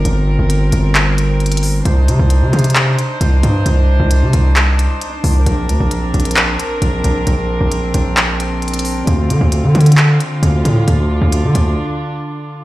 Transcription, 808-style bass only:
X:1
M:4/4
L:1/16
Q:1/4=133
K:Cdor
V:1 name="808-style bass" clef=bass
G,,,3 G,,,3 G,,,8- G,,,2 | C,,2 C, C,,2 C, C,4 z2 C,,2 G,,2 | C,,3 C,,2 C, C,,4- C,, z3 C,,2 | B,,,2 D,, B,,,3 B,,,4 z2 B,,,2 B,,,2 |
B,,,3 B,,,3 B,,,8- B,,,2 | D,,2 D, D,,2 D, D,4 z2 D,,2 A,,2 | D,,3 D,,2 D, D,,2 z8 |]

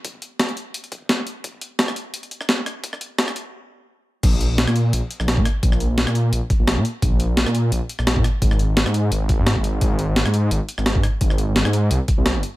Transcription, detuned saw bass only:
X:1
M:4/4
L:1/16
Q:"Swing 16ths" 1/4=172
K:Cm
V:1 name="Detuned saw bass" clef=bass
z16 | z16 | z16 | B,,,3 B,,,2 B,,3 B,,, z2 B,,,2 B,, z2 |
B,,,3 B,,,2 B,,3 B,,, z2 B,,,2 B,, z2 | B,,,3 B,,,2 B,,3 B,,, z2 B,,,2 B,, z2 | A,,,3 A,,,2 A,,3 A,,,3 A,,2 A,,,3 | A,,,3 A,,,2 A,,3 A,,, z2 A,,,2 A,, z2 |
A,,,3 A,,,2 A,,3 C,, z2 C,,2 G,,, z2 |]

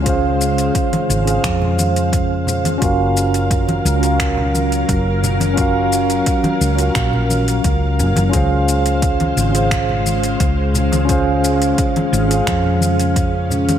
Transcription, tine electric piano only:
X:1
M:4/4
L:1/16
Q:1/4=87
K:Db
V:1 name="Tine electric piano"
[DFAcf]6- [DFAcf] [DFAcf]8- [DFAcf] | [DFGBf]6- [DFGBf] [DFGBf]8- [DFGBf] | [DFGBf]6- [DFGBf] [DFGBf]8- [DFGBf] | [DFAcf]6- [DFAcf] [DFAcf]8- [DFAcf] |
[DFAcf]6- [DFAcf] [DFAcf]8- [DFAcf] |]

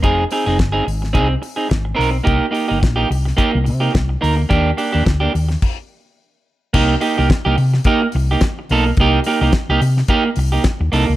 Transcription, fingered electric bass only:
X:1
M:4/4
L:1/16
Q:"Swing 16ths" 1/4=107
K:Eb
V:1 name="Fingered electric bass" clef=bass
F,,,2 z F,,, G,,,2 A,,,2 C,,2 z2 A,,,2 =B,,,2 | C,, z2 G,,, B,,,2 C,,2 z C,, C,2 C,,2 D,,2 | E,,2 z E,, D,,2 E,,2 z8 | [K:Cdor] C,,2 z C,, z C,, C,2 z2 C,,2 z2 =B,,,2 |
C,,2 z C,, z C,, C,2 z2 C,,2 z E,, C,, _D,, |]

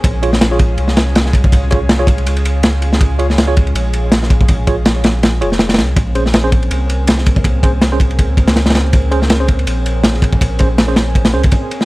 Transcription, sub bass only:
X:1
M:4/4
L:1/8
Q:"Swing 16ths" 1/4=162
K:Bbm
V:1 name="Sub bass" clef=bass
B,,,4 C,,4- | C,,4 D,,4- | D,,4 B,,,4- | B,,,4- B,,, F,,,2 C,, |
B,,,4 C,,4- | C,,4 D,,4- | D,,4 B,,,4- | B,,,4- B,,, D,, z2 |]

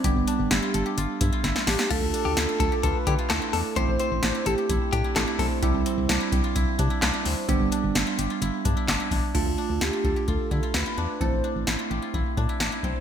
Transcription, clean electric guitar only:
X:1
M:4/4
L:1/16
Q:1/4=129
K:Ddor
V:1 name="Clean electric guitar"
z16 | F z2 G z2 A2 A2 G z A z A z | c2 c3 z A z3 G2 A z A z | z16 |
z16 | z16 | z16 |]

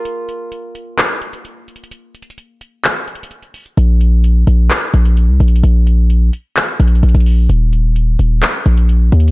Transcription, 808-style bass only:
X:1
M:4/4
L:1/16
Q:1/4=129
K:Ebdor
V:1 name="808-style bass" clef=bass
z16 | z16 | B,,,6 B,,,2 z2 B,,,3 C,, B,,,2 | B,,,6 z4 B,,,2 B,,, B,,,3 |
E,,,6 E,,,2 z2 B,,,4 E,,2 |]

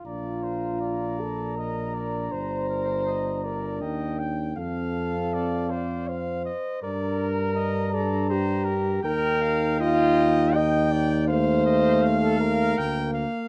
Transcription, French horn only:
X:1
M:3/4
L:1/16
Q:1/4=80
K:Bb
V:1 name="French horn"
F6 A2 B4 | c6 B4 z2 | A6 d2 c4 | B6 A2 G4 |
B4 F4 e2 d2 | c4- c A B4- B z |]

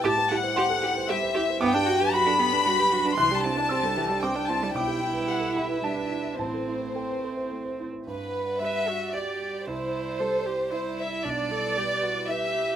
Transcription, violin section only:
X:1
M:3/4
L:1/8
Q:1/4=114
K:G
V:1 name="Violin section"
a f3 e2 | g2 b4 | c' a3 g a | g2 f e3 |
c4- c z | B2 e2 d2 | c4 c e | d4 e2 |]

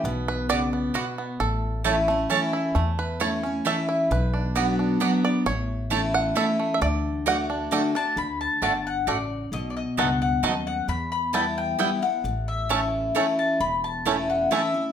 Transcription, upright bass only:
X:1
M:3/4
L:1/8
Q:1/4=133
K:D
V:1 name="Upright bass" clef=bass
B,,,6 | A,,,6 | E,,6 | B,,,6 |
A,,,6 | D,,6 | D,,2 G,,,2 A,,,2 | B,,,2 C,,2 ^D,,2 |
E,,6 | A,,,6 | E,,,6 |]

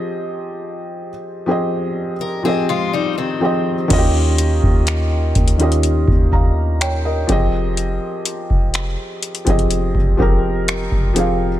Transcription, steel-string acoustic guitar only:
X:1
M:4/4
L:1/16
Q:1/4=62
K:Fm
V:1 name="Steel-string acoustic guitar"
z8 z B [CA] [A,F] [G,E] [E,C]3 | z16 | z16 |]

